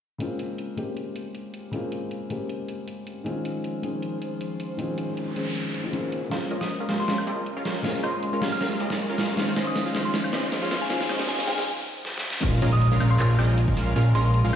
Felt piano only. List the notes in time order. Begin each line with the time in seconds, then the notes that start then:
0.18 C#3 G#3 A#3 C4 F4
0.77 C#3 G#3 A#3 C4 G4
1.71 C#3 G#3 A#3 C4 F4
2.30 C#3 G#3 A#3 C4 G4
3.24 D#3 G#3 C4 C#4
3.28 F4
3.82 D#3 G#3 C4 C#4 G#4
4.77 D#3 G#3 C4 C#4
4.81 F4
5.35 D#3 G#3 C4 C#4 G#4
5.83 D#3 G#3 C4 C#4 F4
5.92 C#3 G#3 A#3 C4 F4
6.29 C#3 G#3 A#3 C4
6.34 F4
6.88 C#3 G#3 A#3 C4 G4
7.82 C#3 G#3 A#3 C4 F4
8.41 C#3 G#3 A#3 C4 G4
9.35 D#3 G#3 C4 C#4 F4
9.94 D#3 G#3 C4 C#4 G#4
10.88 D#3 G#3 C4 C#4
10.93 F4
11.46 D#3 G#3 C4 C#4 G#4